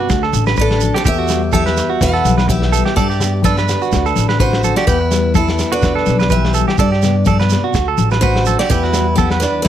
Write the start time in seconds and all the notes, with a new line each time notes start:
Already playing: C3
0.00 F#4
0.09 D2 D3 A3 D4, muted steel-string acoustic guitar stroke, kick, snare, shekere
0.23 A4, snare
0.33 A1 D4, high conga, shekere
0.46 B4, snare, shekere
0.56 A3 D4 B4, muted steel-string acoustic guitar stroke, kick, shekere
0.61 A4
0.71 snare
0.80 F#4, high conga, shekere
0.94 C4 G4 A4, snare
1.05 E2 B3 G4 E5, kick, shekere
1.18 F#4
1.28 G3, snare, shekere
1.52 E3 B3 G4 A4 E5, kick, high conga, shekere
1.66 B4, snare, shekere
1.77 snare, muted conga, shekere
1.90 F#4
2.01 E2 B2 B4 F#5, kick, snare, shekere
2.13 A4, snare
2.25 B1 G3, snare, high conga, shekere
2.38 B4, snare, shekere
2.48 E3 B3 G4 E5, muted clean electric guitar stroke, kick, high conga, shekere
2.62 snare
2.72 G3 A4, shekere
2.85 G4, snare
2.96 G2 D4 G4 A4 D5, kick, shekere
3.10 G4, snare, shekere
3.20 B3, snare, muted conga, low conga, shekere
3.43 D3 D4 A4 B4, muted steel-string acoustic guitar stroke, kick, high conga, shekere
3.57 B4, snare, shekere
3.68 G4, snare, shekere
3.82 F#4, shekere
3.91 D2 D3 A3, kick, snare, muted conga, shekere
3.95 F#4, muted steel-string acoustic guitar stroke
4.05 A4, snare, shekere
4.16 A1 D4, snare, high conga, shekere
4.29 B4, snare
4.40 C3 F#4 B4 C5, kick, shekere
4.53 snare
4.63 D3 A4, high conga, shekere
4.76 F#4 G4 D5, snare
4.87 E2 B3 E4 G4 B4, kick, shekere
5.01 muted clean electric guitar stroke
5.11 G3, snare, shekere
5.34 E3 B3 E4 A4, kick, high conga, shekere
5.48 snare, shekere
5.59 snare, muted conga, shekere
5.72 D4 F#4 B4
5.82 E2 B2, kick, snare, shekere
5.95 A4, snare
6.06 B1 G3, snare, high conga, shekere
6.19 B4, snare, shekere
6.30 E3 B3 G4 B4 E5, kick, high conga, shekere
6.45 snare
6.54 G3 A4, shekere
6.68 G4, snare
6.78 G2 D4 G4 A4 D5, kick, shekere
6.92 G4, snare
7.02 B3, snare, muted conga, low conga, shekere
7.25 B2 G4 A4 D5, kick, high conga, shekere
7.39 B4, snare, shekere
7.49 C3, snare, shekere
7.64 F#4
7.74 D2 D3 F#4, kick, snare, shekere
7.88 A4
7.98 A1 D4, high conga, shekere
8.11 B4, snare, shekere
8.21 A3 F#4 B4 C5, kick, shekere
8.36 snare
8.46 F#4 A4, high conga, shekere
8.59 F#4 G4 D5, snare
8.70 E2 B3 E4 G4 B4, kick, shekere
8.83 F#4, snare
8.93 G3, snare, shekere
9.16 E3 B3 G4 A4, kick, high conga, shekere
9.30 B4, snare, shekere
9.40 D4 B4, snare, shekere
9.62 E4 B4, snare